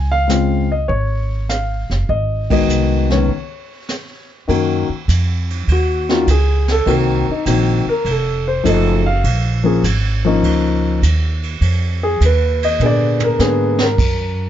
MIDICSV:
0, 0, Header, 1, 5, 480
1, 0, Start_track
1, 0, Key_signature, -5, "major"
1, 0, Tempo, 598205
1, 1676, Time_signature, 4, 2, 24, 8
1, 3596, Key_signature, 6, "major"
1, 5033, Tempo, 593472
1, 11683, End_track
2, 0, Start_track
2, 0, Title_t, "Grand piano"
2, 0, Program_c, 0, 0
2, 93, Note_on_c, 0, 77, 101
2, 221, Note_on_c, 0, 49, 49
2, 229, Note_on_c, 0, 56, 44
2, 233, Note_on_c, 0, 60, 43
2, 239, Note_on_c, 0, 65, 55
2, 526, Note_off_c, 0, 49, 0
2, 530, Note_off_c, 0, 56, 0
2, 532, Note_off_c, 0, 60, 0
2, 535, Note_off_c, 0, 65, 0
2, 574, Note_on_c, 0, 75, 82
2, 584, Note_off_c, 0, 77, 0
2, 708, Note_on_c, 0, 73, 82
2, 723, Note_off_c, 0, 75, 0
2, 1160, Note_off_c, 0, 73, 0
2, 1198, Note_on_c, 0, 77, 81
2, 1680, Note_on_c, 0, 75, 84
2, 1692, Note_off_c, 0, 77, 0
2, 1987, Note_off_c, 0, 75, 0
2, 2006, Note_on_c, 0, 51, 58
2, 2012, Note_on_c, 0, 56, 52
2, 2017, Note_on_c, 0, 59, 50
2, 2023, Note_on_c, 0, 66, 58
2, 2024, Note_on_c, 0, 75, 93
2, 2454, Note_off_c, 0, 51, 0
2, 2457, Note_off_c, 0, 56, 0
2, 2459, Note_off_c, 0, 59, 0
2, 2462, Note_off_c, 0, 66, 0
2, 2485, Note_on_c, 0, 37, 54
2, 2488, Note_on_c, 0, 51, 56
2, 2491, Note_on_c, 0, 58, 50
2, 2500, Note_on_c, 0, 59, 51
2, 2501, Note_on_c, 0, 61, 66
2, 2501, Note_on_c, 0, 73, 71
2, 2510, Note_off_c, 0, 75, 0
2, 2620, Note_off_c, 0, 37, 0
2, 2622, Note_off_c, 0, 51, 0
2, 2623, Note_off_c, 0, 58, 0
2, 2628, Note_off_c, 0, 59, 0
2, 2628, Note_off_c, 0, 61, 0
2, 3422, Note_off_c, 0, 73, 0
2, 3592, Note_on_c, 0, 51, 70
2, 3597, Note_on_c, 0, 58, 64
2, 3604, Note_on_c, 0, 61, 59
2, 3610, Note_on_c, 0, 66, 71
2, 3891, Note_off_c, 0, 51, 0
2, 3894, Note_off_c, 0, 58, 0
2, 3897, Note_off_c, 0, 61, 0
2, 3900, Note_off_c, 0, 66, 0
2, 4589, Note_on_c, 0, 66, 72
2, 4886, Note_off_c, 0, 66, 0
2, 4886, Note_on_c, 0, 51, 63
2, 4891, Note_on_c, 0, 58, 59
2, 4896, Note_on_c, 0, 61, 59
2, 4898, Note_on_c, 0, 66, 74
2, 4901, Note_on_c, 0, 65, 76
2, 5018, Note_off_c, 0, 51, 0
2, 5021, Note_off_c, 0, 58, 0
2, 5023, Note_off_c, 0, 61, 0
2, 5024, Note_off_c, 0, 66, 0
2, 5036, Note_off_c, 0, 65, 0
2, 5059, Note_on_c, 0, 68, 72
2, 5368, Note_off_c, 0, 68, 0
2, 5391, Note_on_c, 0, 69, 91
2, 5509, Note_on_c, 0, 51, 66
2, 5515, Note_on_c, 0, 58, 60
2, 5518, Note_on_c, 0, 60, 58
2, 5523, Note_off_c, 0, 69, 0
2, 5523, Note_on_c, 0, 66, 75
2, 5538, Note_on_c, 0, 70, 88
2, 5810, Note_off_c, 0, 51, 0
2, 5813, Note_off_c, 0, 58, 0
2, 5815, Note_off_c, 0, 60, 0
2, 5817, Note_off_c, 0, 66, 0
2, 5848, Note_off_c, 0, 70, 0
2, 5873, Note_on_c, 0, 63, 66
2, 5988, Note_on_c, 0, 51, 58
2, 5993, Note_on_c, 0, 58, 51
2, 6000, Note_on_c, 0, 60, 51
2, 6003, Note_on_c, 0, 66, 64
2, 6005, Note_off_c, 0, 63, 0
2, 6290, Note_off_c, 0, 51, 0
2, 6293, Note_off_c, 0, 58, 0
2, 6296, Note_off_c, 0, 60, 0
2, 6298, Note_off_c, 0, 66, 0
2, 6341, Note_on_c, 0, 70, 86
2, 6479, Note_off_c, 0, 70, 0
2, 6518, Note_on_c, 0, 69, 72
2, 6816, Note_on_c, 0, 72, 83
2, 6820, Note_off_c, 0, 69, 0
2, 6944, Note_on_c, 0, 53, 68
2, 6948, Note_on_c, 0, 57, 60
2, 6954, Note_on_c, 0, 63, 60
2, 6956, Note_off_c, 0, 72, 0
2, 6961, Note_on_c, 0, 69, 75
2, 6988, Note_on_c, 0, 75, 80
2, 7249, Note_off_c, 0, 53, 0
2, 7251, Note_off_c, 0, 57, 0
2, 7254, Note_off_c, 0, 63, 0
2, 7257, Note_off_c, 0, 69, 0
2, 7290, Note_on_c, 0, 77, 92
2, 7294, Note_off_c, 0, 75, 0
2, 7737, Note_off_c, 0, 77, 0
2, 7753, Note_on_c, 0, 53, 62
2, 7759, Note_on_c, 0, 58, 61
2, 7764, Note_on_c, 0, 61, 65
2, 7768, Note_on_c, 0, 68, 73
2, 7895, Note_off_c, 0, 53, 0
2, 7898, Note_off_c, 0, 58, 0
2, 7900, Note_off_c, 0, 61, 0
2, 7902, Note_off_c, 0, 68, 0
2, 8247, Note_on_c, 0, 53, 76
2, 8250, Note_on_c, 0, 58, 64
2, 8258, Note_on_c, 0, 61, 68
2, 8263, Note_on_c, 0, 63, 77
2, 8847, Note_off_c, 0, 53, 0
2, 8848, Note_off_c, 0, 58, 0
2, 8852, Note_off_c, 0, 61, 0
2, 8855, Note_off_c, 0, 63, 0
2, 9693, Note_on_c, 0, 68, 83
2, 9835, Note_off_c, 0, 68, 0
2, 9869, Note_on_c, 0, 71, 78
2, 10174, Note_off_c, 0, 71, 0
2, 10187, Note_on_c, 0, 75, 104
2, 10317, Note_on_c, 0, 50, 53
2, 10321, Note_on_c, 0, 58, 50
2, 10322, Note_off_c, 0, 75, 0
2, 10329, Note_on_c, 0, 59, 46
2, 10331, Note_on_c, 0, 68, 62
2, 10359, Note_on_c, 0, 74, 82
2, 10659, Note_off_c, 0, 74, 0
2, 10667, Note_on_c, 0, 70, 84
2, 10776, Note_off_c, 0, 50, 0
2, 10779, Note_off_c, 0, 58, 0
2, 10786, Note_off_c, 0, 59, 0
2, 10788, Note_off_c, 0, 68, 0
2, 10788, Note_on_c, 0, 50, 67
2, 10791, Note_on_c, 0, 58, 65
2, 10798, Note_on_c, 0, 59, 69
2, 10801, Note_off_c, 0, 70, 0
2, 10804, Note_on_c, 0, 68, 77
2, 11089, Note_off_c, 0, 50, 0
2, 11091, Note_off_c, 0, 58, 0
2, 11095, Note_off_c, 0, 59, 0
2, 11097, Note_off_c, 0, 68, 0
2, 11132, Note_on_c, 0, 70, 81
2, 11683, Note_off_c, 0, 70, 0
2, 11683, End_track
3, 0, Start_track
3, 0, Title_t, "Upright bass"
3, 0, Program_c, 1, 32
3, 0, Note_on_c, 1, 37, 80
3, 680, Note_off_c, 1, 37, 0
3, 717, Note_on_c, 1, 32, 79
3, 1496, Note_off_c, 1, 32, 0
3, 1522, Note_on_c, 1, 30, 68
3, 1663, Note_off_c, 1, 30, 0
3, 1678, Note_on_c, 1, 32, 76
3, 2125, Note_off_c, 1, 32, 0
3, 2149, Note_on_c, 1, 36, 68
3, 2600, Note_off_c, 1, 36, 0
3, 3599, Note_on_c, 1, 42, 81
3, 3905, Note_off_c, 1, 42, 0
3, 4077, Note_on_c, 1, 41, 82
3, 4540, Note_off_c, 1, 41, 0
3, 4555, Note_on_c, 1, 39, 78
3, 5018, Note_off_c, 1, 39, 0
3, 5031, Note_on_c, 1, 37, 81
3, 5498, Note_off_c, 1, 37, 0
3, 5509, Note_on_c, 1, 36, 80
3, 5820, Note_off_c, 1, 36, 0
3, 5995, Note_on_c, 1, 34, 87
3, 6303, Note_off_c, 1, 34, 0
3, 6468, Note_on_c, 1, 29, 79
3, 6938, Note_off_c, 1, 29, 0
3, 6956, Note_on_c, 1, 30, 86
3, 7422, Note_off_c, 1, 30, 0
3, 7434, Note_on_c, 1, 34, 85
3, 7902, Note_off_c, 1, 34, 0
3, 7914, Note_on_c, 1, 32, 90
3, 8382, Note_off_c, 1, 32, 0
3, 8394, Note_on_c, 1, 37, 81
3, 8862, Note_off_c, 1, 37, 0
3, 8875, Note_on_c, 1, 39, 79
3, 9342, Note_off_c, 1, 39, 0
3, 9351, Note_on_c, 1, 41, 81
3, 9819, Note_off_c, 1, 41, 0
3, 9832, Note_on_c, 1, 39, 88
3, 10300, Note_off_c, 1, 39, 0
3, 10308, Note_on_c, 1, 46, 80
3, 10777, Note_off_c, 1, 46, 0
3, 10793, Note_on_c, 1, 44, 84
3, 11259, Note_off_c, 1, 44, 0
3, 11266, Note_on_c, 1, 42, 84
3, 11683, Note_off_c, 1, 42, 0
3, 11683, End_track
4, 0, Start_track
4, 0, Title_t, "Muted upright bass strokes"
4, 3925, Note_on_c, 9, 29, 35
4, 4005, Note_off_c, 9, 29, 0
4, 5856, Note_on_c, 9, 29, 38
4, 5937, Note_off_c, 9, 29, 0
4, 6321, Note_on_c, 9, 29, 43
4, 6402, Note_off_c, 9, 29, 0
4, 11683, End_track
5, 0, Start_track
5, 0, Title_t, "Drums"
5, 236, Note_on_c, 9, 38, 57
5, 238, Note_on_c, 9, 44, 54
5, 316, Note_off_c, 9, 38, 0
5, 318, Note_off_c, 9, 44, 0
5, 716, Note_on_c, 9, 36, 31
5, 719, Note_on_c, 9, 25, 47
5, 796, Note_off_c, 9, 36, 0
5, 1198, Note_on_c, 9, 38, 50
5, 1200, Note_on_c, 9, 44, 50
5, 1279, Note_off_c, 9, 38, 0
5, 1280, Note_off_c, 9, 44, 0
5, 1529, Note_on_c, 9, 38, 36
5, 1610, Note_off_c, 9, 38, 0
5, 1677, Note_off_c, 9, 25, 0
5, 1677, Note_on_c, 9, 25, 44
5, 1677, Note_on_c, 9, 36, 31
5, 1757, Note_off_c, 9, 36, 0
5, 2009, Note_on_c, 9, 36, 69
5, 2011, Note_on_c, 9, 51, 65
5, 2090, Note_off_c, 9, 36, 0
5, 2091, Note_off_c, 9, 51, 0
5, 2162, Note_on_c, 9, 44, 55
5, 2242, Note_off_c, 9, 44, 0
5, 2490, Note_on_c, 9, 38, 37
5, 2570, Note_off_c, 9, 38, 0
5, 2635, Note_off_c, 9, 25, 0
5, 2635, Note_on_c, 9, 25, 43
5, 2637, Note_on_c, 9, 36, 30
5, 2718, Note_off_c, 9, 36, 0
5, 3119, Note_on_c, 9, 38, 53
5, 3121, Note_on_c, 9, 44, 45
5, 3199, Note_off_c, 9, 38, 0
5, 3201, Note_off_c, 9, 44, 0
5, 3601, Note_on_c, 9, 36, 23
5, 3605, Note_on_c, 9, 51, 57
5, 3681, Note_off_c, 9, 36, 0
5, 3685, Note_off_c, 9, 51, 0
5, 3985, Note_off_c, 9, 25, 0
5, 4079, Note_on_c, 9, 36, 27
5, 4081, Note_on_c, 9, 44, 63
5, 4081, Note_on_c, 9, 51, 68
5, 4159, Note_off_c, 9, 36, 0
5, 4161, Note_off_c, 9, 44, 0
5, 4161, Note_off_c, 9, 51, 0
5, 4415, Note_on_c, 9, 51, 46
5, 4495, Note_off_c, 9, 51, 0
5, 4557, Note_on_c, 9, 36, 20
5, 4561, Note_on_c, 9, 51, 55
5, 4637, Note_off_c, 9, 36, 0
5, 4641, Note_off_c, 9, 51, 0
5, 4888, Note_on_c, 9, 38, 41
5, 4968, Note_off_c, 9, 38, 0
5, 5033, Note_on_c, 9, 36, 24
5, 5035, Note_on_c, 9, 44, 59
5, 5035, Note_on_c, 9, 51, 61
5, 5114, Note_off_c, 9, 36, 0
5, 5116, Note_off_c, 9, 44, 0
5, 5116, Note_off_c, 9, 51, 0
5, 5363, Note_on_c, 9, 38, 53
5, 5364, Note_on_c, 9, 51, 49
5, 5444, Note_off_c, 9, 38, 0
5, 5445, Note_off_c, 9, 51, 0
5, 5513, Note_on_c, 9, 36, 21
5, 5515, Note_on_c, 9, 51, 63
5, 5594, Note_off_c, 9, 36, 0
5, 5596, Note_off_c, 9, 51, 0
5, 5993, Note_on_c, 9, 36, 21
5, 5993, Note_on_c, 9, 44, 57
5, 5993, Note_on_c, 9, 51, 73
5, 6074, Note_off_c, 9, 36, 0
5, 6074, Note_off_c, 9, 44, 0
5, 6074, Note_off_c, 9, 51, 0
5, 6472, Note_on_c, 9, 36, 21
5, 6475, Note_on_c, 9, 51, 63
5, 6553, Note_off_c, 9, 36, 0
5, 6556, Note_off_c, 9, 51, 0
5, 6954, Note_on_c, 9, 36, 23
5, 6958, Note_on_c, 9, 44, 61
5, 6958, Note_on_c, 9, 51, 63
5, 7035, Note_off_c, 9, 36, 0
5, 7039, Note_off_c, 9, 44, 0
5, 7039, Note_off_c, 9, 51, 0
5, 7433, Note_on_c, 9, 36, 20
5, 7436, Note_on_c, 9, 51, 68
5, 7514, Note_off_c, 9, 36, 0
5, 7517, Note_off_c, 9, 51, 0
5, 7915, Note_on_c, 9, 36, 22
5, 7918, Note_on_c, 9, 44, 59
5, 7918, Note_on_c, 9, 51, 74
5, 7996, Note_off_c, 9, 36, 0
5, 7999, Note_off_c, 9, 44, 0
5, 7999, Note_off_c, 9, 51, 0
5, 8397, Note_on_c, 9, 36, 22
5, 8403, Note_on_c, 9, 51, 64
5, 8478, Note_off_c, 9, 36, 0
5, 8484, Note_off_c, 9, 51, 0
5, 8876, Note_on_c, 9, 36, 22
5, 8880, Note_on_c, 9, 44, 60
5, 8880, Note_on_c, 9, 51, 69
5, 8957, Note_off_c, 9, 36, 0
5, 8961, Note_off_c, 9, 44, 0
5, 8961, Note_off_c, 9, 51, 0
5, 9206, Note_on_c, 9, 51, 46
5, 9287, Note_off_c, 9, 51, 0
5, 9354, Note_on_c, 9, 36, 27
5, 9354, Note_on_c, 9, 51, 70
5, 9435, Note_off_c, 9, 36, 0
5, 9435, Note_off_c, 9, 51, 0
5, 9836, Note_on_c, 9, 36, 20
5, 9837, Note_on_c, 9, 44, 61
5, 9837, Note_on_c, 9, 51, 67
5, 9917, Note_off_c, 9, 36, 0
5, 9918, Note_off_c, 9, 44, 0
5, 9918, Note_off_c, 9, 51, 0
5, 10173, Note_on_c, 9, 51, 68
5, 10254, Note_off_c, 9, 51, 0
5, 10316, Note_on_c, 9, 43, 49
5, 10397, Note_off_c, 9, 43, 0
5, 10636, Note_on_c, 9, 43, 72
5, 10717, Note_off_c, 9, 43, 0
5, 10794, Note_on_c, 9, 38, 64
5, 10795, Note_on_c, 9, 44, 57
5, 10875, Note_off_c, 9, 38, 0
5, 10876, Note_off_c, 9, 44, 0
5, 11110, Note_on_c, 9, 38, 91
5, 11191, Note_off_c, 9, 38, 0
5, 11270, Note_on_c, 9, 36, 77
5, 11273, Note_on_c, 9, 49, 78
5, 11351, Note_off_c, 9, 36, 0
5, 11354, Note_off_c, 9, 49, 0
5, 11683, End_track
0, 0, End_of_file